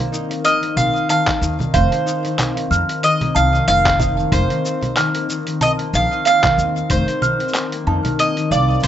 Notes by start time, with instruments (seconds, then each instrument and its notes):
Already playing: harp D#3 C4, ambient pad F3 C4 D#4 A#4
0.00 harp A#3
0.12 harp D#4, shaker
0.30 harp D#3, closed hi-hat, shaker
0.45 harp A#3, mandolin D#5, music box F6, closed hi-hat, shaker
0.63 harp D#3, closed hi-hat
0.77 upright bass A#1, harp C4, mandolin F5, low conga, shaker
0.96 shaker
1.09 harp D#3, mandolin F5, music box A5, closed hi-hat, shaker
1.27 harp A#3, kick, clap, closed hi-hat
1.41 upright bass D#2, harp D#3, shaker
1.59 harp D#3, low conga, shaker
1.73 upright bass F1, harp C4, mandolin C5, music box F5, kick, closed hi-hat, shaker
1.92 harp A#3, closed hi-hat, shaker
2.06 harp D#4, shaker
2.24 harp D#3, closed hi-hat, shaker
2.38 harp A#3, clap, closed hi-hat, low conga, shaker
2.57 harp D#3, closed hi-hat
2.71 upright bass F2, harp C4, music box F6, shaker
2.89 closed hi-hat, shaker
3.03 harp D#3, mandolin D#5, closed hi-hat, shaker
3.21 harp A#3, closed hi-hat, low conga
3.35 upright bass C2, harp D#3, mandolin F5, music box A5, shaker
3.53 harp D#3, shaker
3.68 upright bass F1, harp C4, mandolin F5, closed hi-hat, shaker
3.85 harp A#3, kick, clap, closed hi-hat
4.00 harp D#4, music box F5, kick, low conga, shaker
4.18 harp D#3, shaker
4.32 upright bass F1, harp A#3, mandolin C5, kick, closed hi-hat, shaker
4.50 harp D#3, closed hi-hat, shaker
4.65 harp C4, shaker
4.83 closed hi-hat, low conga, shaker
4.97 harp D#3, music box F6, clap, closed hi-hat, shaker
5.15 harp A#3, closed hi-hat
5.29 harp D#3, shaker
5.47 harp D#3, closed hi-hat, shaker
5.61 harp C4, mandolin D#5, music box A5, closed hi-hat, low conga, shaker
5.79 harp A#3, closed hi-hat
5.94 upright bass A#1, harp D#4, mandolin F5, shaker
6.12 harp D#3, shaker
6.25 harp A#3, music box F5, mandolin F5, closed hi-hat, shaker
6.44 harp D#3, kick, clap, closed hi-hat, low conga
6.58 upright bass D#2, harp C4, shaker
6.77 shaker
6.90 upright bass F1, harp D#3, mandolin C5, kick, closed hi-hat, shaker
7.08 harp A#3, closed hi-hat, shaker
7.22 harp D#3, music box F6, low conga, shaker
7.40 harp D#3, closed hi-hat
7.48 shaker
7.54 harp C4, clap, closed hi-hat, shaker
7.72 harp A#3, closed hi-hat
7.87 upright bass F2, harp D#4, music box A5
8.05 harp D#3, closed hi-hat, low conga, shaker
8.19 harp A#3, mandolin D#5, closed hi-hat, shaker
8.37 harp D#3, closed hi-hat, shaker
8.51 upright bass C2, harp C4, mandolin D5, music box F5, shaker
8.70 shaker
8.74 shaker
8.80 upright bass F1, mandolin C5, closed hi-hat, low conga, shaker
8.84 harp D#3